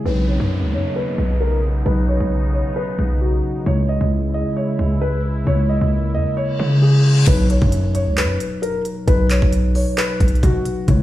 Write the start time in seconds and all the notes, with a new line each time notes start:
0.04 B1 B2 C#3 F#3 B3 D#4 B4 C#5, downlifter
0.28 C#5
0.40 F#2
0.63 C#2
0.73 F#2 C#5
0.96 B4
1.18 B1
1.40 A#4
1.84 B1 B2 F#3 D#4 B4
2.08 C#5
2.20 B1
2.53 C#5
2.76 B4
2.99 B1
3.21 F#4
3.65 C#2 C#3 G#3 E4 C#5
3.89 D#5
4.01 C#2
4.34 D#5
4.56 C#5
4.79 C#2
5.01 B4
5.44 C#2 C#3 G#3 A#3 E4 C#5
5.69 D#5
5.81 C#2
6.14 E2 D#5
6.37 C#5, reverse cymbal
6.60 C#3
6.82 G#4
7.25 B1 B2 F#3 D#4 B4 C#5, kick, closed hi-hat, crash, impact
7.50 C#5, closed hi-hat
7.62 F#2, kick
7.72 closed hi-hat
7.95 C#5, closed hi-hat
8.07 C#2
8.17 B4, clap, closed hi-hat
8.23 F#2
8.40 closed hi-hat
8.62 A#4, closed hi-hat
8.85 closed hi-hat
9.06 B1 B2 F#3 D#4 B4, kick, closed hi-hat
9.30 C#5, clap, closed hi-hat
9.42 B1, kick
9.53 closed hi-hat
9.75 C#5, open hi-hat
9.98 B4, clap, closed hi-hat
10.20 B1, kick, closed hi-hat
10.28 closed hi-hat
10.35 closed hi-hat
10.43 B2 F#4, kick, closed hi-hat
10.65 closed hi-hat
10.87 C#2 C#3 G#3 E4 C#5, kick, closed hi-hat